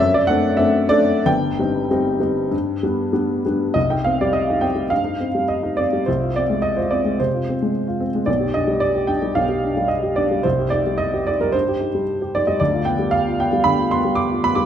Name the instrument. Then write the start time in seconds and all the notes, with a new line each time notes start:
upright piano
Already playing: E5
0.00 F#2
0.14 D5
0.27 A3 C4 D4 F#5
0.57 A3 C4 D4 E5
0.89 A3 C4 D4 D5
1.26 G1 G2 G5
1.59 G3 C4 D#4
1.90 G3 C4 D#4
2.20 G3 C4 D#4
2.51 G2
2.83 G3 B3 D4
3.13 G3 B3 D4
3.46 G3 B3 D4
3.74 C2 D#5
3.90 D#4 G5
4.04 C4 F5
4.21 G3 D5
4.33 D#5
4.49 D#4
4.61 C4 G5
4.75 G3
4.90 G2 F5
5.04 D#4
5.20 C4
5.35 G3
5.48 D#5
5.63 D#4
5.77 C4 D5
5.93 G3
6.06 C2 C5
6.21 F4
6.36 C4 D5
6.50 G#3
6.62 D#5
6.76 F4 C5
6.91 C4 D5
7.05 G#3
7.20 C3 C5
7.34 F4
7.49 C4
7.62 G#3
7.88 F4
8.00 C4
8.15 G#3
8.26 B1 D5
8.41 G4
8.54 D4 D#5
8.68 G3
8.80 D5
8.95 G4
9.07 D4 G5
9.22 G3
9.35 B1 F5
9.49 G4
9.65 D4
9.77 G3
9.88 D#5
10.03 G4
10.16 D4 D5
10.31 G3
10.43 C2 C5
10.59 G4
10.70 D#4 D5
10.87 G3
10.98 D#5
11.14 G4
11.27 D#4 D5
11.40 G3 A#4
11.52 G2 C5
11.68 G4
11.81 D#4
11.95 G3
12.22 G4
12.35 D#4 D5
12.47 G3 D#5
12.60 D2 D5
12.74 F4
12.85 B3 G5
12.99 G3
13.11 F5
13.27 F4
13.40 B3 G5
13.53 G3
13.64 D3 B5
13.79 F4
13.91 B3 C6
14.05 G3
14.15 D6
14.31 F4
14.44 B3 B5
14.55 G3 D6